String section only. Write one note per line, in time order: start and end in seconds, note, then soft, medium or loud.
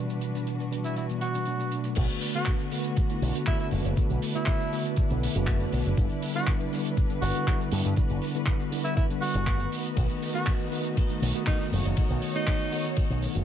0.00 1.68 G3 medium
0.00 1.68 D4 medium
0.00 1.95 F#4 medium
0.00 1.93 B4 medium
1.72 1.96 A3 medium
1.72 1.96 D4 medium
1.97 5.93 A3 medium
1.97 9.68 D4 medium
1.97 3.95 F#4 medium
1.97 11.68 B4 medium
3.97 7.93 E4 medium
5.97 9.68 G3 medium
7.97 13.44 F#4 medium
9.72 13.44 A3 medium
9.72 13.44 D#4 medium
11.73 13.44 C#5 medium